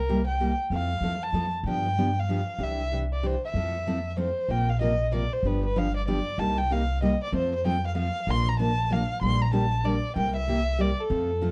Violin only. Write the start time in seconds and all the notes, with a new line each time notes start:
Already playing: A#4
0.27 G5
0.73 F5
1.23 A5
1.68 G5
2.19 F5
2.63 E5
3.13 D5
3.26 C5
3.45 E5
4.20 C5
4.51 G5
4.70 F5
4.82 D#5
5.16 D5
5.33 C5
5.47 B4
5.65 B4
5.78 F5
5.96 D5
6.09 D5
6.39 A5
6.58 G5
6.72 F5
7.04 D#5
7.23 D5
7.37 C5
7.55 C5
7.67 G5
7.87 F5
7.98 F5
8.31 C6
8.49 A#5
8.60 A5
8.92 F5
9.23 C6
9.41 A#5
9.54 A5
9.85 D5
10.17 G5
10.37 E5
10.81 D5
11.00 A4